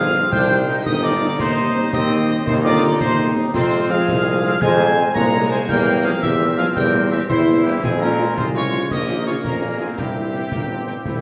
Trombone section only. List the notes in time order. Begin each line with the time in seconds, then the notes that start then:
Already playing: C4
0.33 D4
0.50 C4
0.67 D#4
1.39 D#4
1.93 C4
2.47 D#4
3.54 C4
4.08 G#3
4.25 A#3
4.44 C4
4.62 G#3
4.80 A#3
4.97 C4
5.15 G#3
5.69 A#3
6.23 C4
7.30 E4
7.84 C4
8.37 G#3
8.90 A#3
9.97 E4
10.52 A#3
10.69 C4
11.06 E4